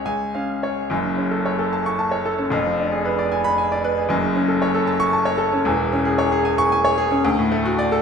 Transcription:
0.05 0.88 C#2 medium
0.05 0.51 G#5 medium
0.35 0.57 C#4 medium
0.35 0.80 F5 medium
0.63 0.91 C#5 medium
0.90 2.48 F#1 medium
0.90 2.49 F#2 medium
1.04 1.26 C#3 medium
1.18 1.40 C#4 medium
1.31 1.53 A4 medium
1.46 1.67 C#5 medium
1.59 1.80 A4 medium
1.73 1.94 A5 medium
1.86 2.08 C#6 medium
1.99 2.21 A5 medium
2.11 2.34 C#5 medium
2.26 2.47 A4 medium
2.39 2.52 C#4 medium
2.50 4.06 F1 medium
2.50 4.06 F2 loud
2.66 2.87 F3 medium
2.79 3.00 D4 medium
2.92 3.13 G#4 medium
3.05 3.27 B4 medium
3.19 3.40 D5 medium
3.32 3.53 G#5 medium
3.44 3.66 B5 loud
3.58 3.79 G#5 medium
3.72 3.93 D5 medium
3.84 4.05 B4 medium
3.97 4.11 G#4 medium
4.09 5.61 F#1 medium
4.09 5.62 F#2 loud
4.23 4.44 C#3 medium
4.36 4.57 C#4 medium
4.48 4.69 A4 medium
4.62 4.83 C#5 medium
4.75 4.95 A4 medium
4.87 5.08 A5 medium
5.00 5.21 C#6 loud
5.13 5.34 A5 medium
5.25 5.47 C#5 medium
5.38 5.60 A4 medium
5.52 5.66 C#4 medium
5.65 7.20 E1 loud
5.65 7.21 E2 loud
5.80 6.01 E3 medium
5.93 6.14 C#4 medium
6.05 6.27 G#4 medium
6.18 6.40 C#5 medium
6.32 6.53 G#4 medium
6.45 6.66 G#5 medium
6.58 6.80 C#6 loud
6.72 6.93 G#5 loud
6.85 7.06 C#5 loud
6.98 7.19 G#4 loud
7.11 7.25 C#4 medium
7.25 8.02 D2 loud
7.39 7.60 A2 medium
7.52 7.73 A3 medium
7.65 7.87 F#4 loud
7.79 8.00 D5 loud
7.92 8.02 A4 loud

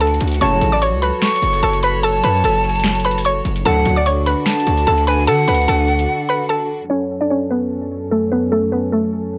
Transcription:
0.00 0.19 D2 loud
0.00 0.38 D3 medium
0.00 0.38 D4 medium
0.00 3.61 F#4 medium
0.00 0.37 A4 medium
0.00 0.39 A4 medium
0.00 0.39 A5 medium
0.00 closed hi-hat soft
0.07 closed hi-hat medium
0.14 closed hi-hat medium
0.21 0.40 D2 loud
0.21 closed hi-hat medium
0.21 open hi-hat medium
0.28 closed hi-hat medium
0.32 closed hi-hat medium
0.34 closed hi-hat medium
0.41 0.61 F#1 loud
0.41 0.71 A2 loud
0.41 0.71 C#3 loud
0.41 0.71 F#3 loud
0.41 3.62 F#3 medium
0.41 3.62 A4 medium
0.41 3.62 C#5 medium
0.41 0.71 C#5 medium
0.41 0.79 A5 loud
0.41 0.70 C#6 medium
0.41 closed hi-hat medium
0.61 0.94 A1 loud
0.61 closed hi-hat medium
0.72 0.80 D5 medium
0.72 0.80 D6 medium
0.82 0.98 C#5 medium
0.82 0.98 C#6 medium
0.82 closed hi-hat medium
0.92 1.12 C#2 loud
1.02 1.60 B4 medium
1.02 1.59 B5 medium
1.02 closed hi-hat medium
1.22 1.79 C#6 medium
1.22 finger snap medium
1.22 snare loud
1.22 closed hi-hat medium
1.29 closed hi-hat medium
1.36 closed hi-hat medium
1.42 1.62 F#1 loud
1.42 closed hi-hat medium
1.53 closed hi-hat soft
1.63 2.21 F#1 loud
1.63 1.79 A4 medium
1.63 1.79 A5 medium
1.63 closed hi-hat medium
1.73 closed hi-hat medium
1.83 2.00 B4 medium
1.83 1.99 B5 medium
1.83 2.02 B5 medium
1.83 closed hi-hat medium
2.03 2.20 A4 medium
2.03 2.19 A5 loud
2.03 3.21 A5 loud
2.03 closed hi-hat medium
2.24 2.43 F#2 loud
2.24 2.40 B4 medium
2.24 2.40 B5 medium
2.24 closed hi-hat medium
2.44 3.41 F#1 loud
2.44 3.01 A4 medium
2.44 3.01 A5 medium
2.44 closed hi-hat medium
2.64 closed hi-hat soft
2.69 closed hi-hat medium
2.75 closed hi-hat medium
2.80 closed hi-hat medium
2.84 finger snap medium
2.84 snare loud
2.84 closed hi-hat medium
2.90 closed hi-hat medium
2.95 closed hi-hat medium
3.00 closed hi-hat medium
3.05 3.21 B4 medium
3.05 3.21 B5 medium
3.05 closed hi-hat medium
3.11 closed hi-hat medium
3.18 closed hi-hat medium
3.25 3.42 C#5 medium
3.25 3.41 C#6 medium
3.25 closed hi-hat medium
3.45 3.65 F#1 loud
3.45 closed hi-hat medium
3.56 closed hi-hat medium
3.65 3.85 D2 loud
3.65 3.95 A2 medium
3.65 3.95 D3 loud
3.65 6.87 D3 medium
3.65 3.95 F#3 loud
3.65 6.87 D4 medium
3.65 6.87 F#4 medium
3.65 6.87 A4 medium
3.65 3.95 A4 medium
3.65 4.04 F#5 loud
3.65 3.95 A5 loud
3.65 closed hi-hat medium
3.86 4.35 D2 loud
3.86 closed hi-hat medium
3.96 4.04 D5 medium
3.96 4.04 D6 medium
4.06 4.23 C#5 medium
4.06 4.22 C#6 medium
4.06 closed hi-hat medium
4.26 4.84 B4 medium
4.26 4.83 B5 medium
4.26 closed hi-hat medium
4.46 5.04 A5 medium
4.46 finger snap medium
4.46 snare loud
4.46 closed hi-hat medium
4.53 closed hi-hat medium
4.60 closed hi-hat medium
4.67 4.86 D2 loud
4.67 closed hi-hat medium
4.77 closed hi-hat soft
4.87 5.29 D2 loud
4.87 5.04 A4 medium
4.87 5.03 A5 medium
4.87 closed hi-hat medium
4.98 closed hi-hat medium
5.07 5.24 B4 medium
5.07 5.26 G#5 medium
5.07 5.23 B5 medium
5.07 closed hi-hat medium
5.27 5.47 D3 loud
5.27 5.44 A4 medium
5.27 6.45 F#5 loud
5.27 5.44 A5 loud
5.27 closed hi-hat medium
5.48 5.67 D2 loud
5.48 5.64 B4 medium
5.48 5.64 B5 medium
5.48 closed hi-hat medium
5.55 closed hi-hat medium
5.61 closed hi-hat soft
5.68 6.07 D2 loud
5.68 6.26 A4 medium
5.68 6.25 A5 medium
5.68 closed hi-hat medium
5.88 closed hi-hat soft
5.99 closed hi-hat medium
6.29 6.45 B4 medium
6.29 6.45 B5 medium
6.49 6.88 A4 medium
6.49 6.87 A5 medium
6.90 9.38 F#2 medium
6.90 9.38 F#3 medium
6.90 9.38 C#4 medium
6.90 7.19 C#4 medium
6.90 9.38 A4 medium
6.90 7.19 C#5 medium
7.21 7.29 D4 medium
7.21 7.28 D5 medium
7.30 7.47 C#4 medium
7.30 7.47 C#5 medium
7.51 8.08 B3 medium
7.51 8.08 B4 medium
8.11 8.28 A3 medium
8.11 8.27 A4 medium
8.32 8.48 B3 medium
8.32 8.48 B4 medium
8.52 8.68 A3 medium
8.52 8.68 A4 loud
8.72 8.89 B3 medium
8.72 8.88 B4 medium
8.92 9.38 A3 medium
8.92 9.38 A4 medium

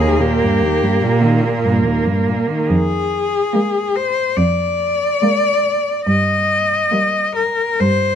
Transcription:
0.00 0.23 D#3 soft
0.00 2.67 A#3 soft
0.00 0.23 G#4 medium
0.21 0.43 A#2 soft
0.21 1.43 G4 medium
0.42 0.63 G2 soft
0.62 0.83 D#2 soft
0.82 1.02 G2 soft
1.03 1.71 A#2 medium
1.03 1.24 A#2 soft
1.23 1.45 D#3 soft
1.44 1.65 A#2 soft
1.63 1.86 G2 soft
1.85 2.07 D#2 soft
2.06 2.29 G2 soft
2.27 2.50 A#2 soft
2.48 2.70 D#3 soft
2.69 3.37 F2 medium
2.69 3.97 G#4 medium
3.53 4.17 G#3 soft
3.53 4.16 A#3 soft
3.96 4.38 C5 medium
4.37 5.05 F2 soft
4.37 6.06 D5 medium
5.22 5.86 G#3 soft
5.22 5.86 A#3 soft
6.06 6.74 G2 soft
6.06 7.33 D#5 medium
6.91 7.59 G3 soft
6.91 7.59 A#3 soft
7.36 7.81 A#4 medium
7.79 8.15 G2 soft
7.79 8.15 C5 medium

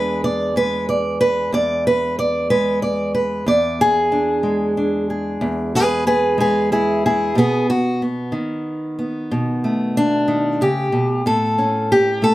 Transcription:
0.00 1.52 E2 medium
0.00 0.55 G#3 medium
0.00 3.43 D4 medium
0.00 3.44 G#4 medium
0.00 0.23 B4 loud
0.24 0.56 D5 loud
0.56 2.49 G#3 medium
0.56 0.88 B4 loud
0.89 1.20 D5 medium
1.21 1.53 B4 loud
1.53 3.45 E2 medium
1.53 1.86 D5 loud
1.87 2.18 B4 loud
2.19 2.50 D5 loud
2.50 3.43 G#3 medium
2.50 2.82 B4 loud
2.82 3.14 D5 medium
3.15 3.47 B4 medium
3.46 5.40 E2 medium
3.46 3.80 D5 loud
3.81 5.09 G#4 loud
4.12 4.76 D4 medium
4.43 6.37 G#3 medium
4.77 7.32 D4 soft
5.10 5.74 G#4 soft
5.41 7.36 E2 medium
5.75 6.06 G#4 medium
5.75 6.06 B4 loud
6.07 6.39 G#4 medium
6.07 6.39 B4 loud
6.38 7.31 G#3 medium
6.38 6.71 G#4 medium
6.38 6.71 B4 medium
6.72 7.04 E4 medium
6.72 7.04 G#4 medium
7.06 7.37 E4 medium
7.06 7.37 G#4 medium
7.35 8.33 B2 medium
7.35 7.69 B3 medium
7.35 7.69 G#4 medium
7.70 8.01 F#4 loud
8.02 8.97 B3 soft
8.32 10.27 D#3 medium
8.99 9.96 B3 soft
9.31 10.61 B2 medium
9.64 11.22 A3 soft
9.97 10.61 D4 loud
10.28 10.60 D#3 medium
10.61 10.92 C#3 medium
10.61 11.26 G4 loud
10.92 11.25 B2 medium
11.26 12.35 A2 medium
11.26 11.91 A4 loud
11.58 12.35 C#4 soft
11.92 12.23 G4 loud
12.22 12.35 A3 medium
12.22 12.35 A4 loud

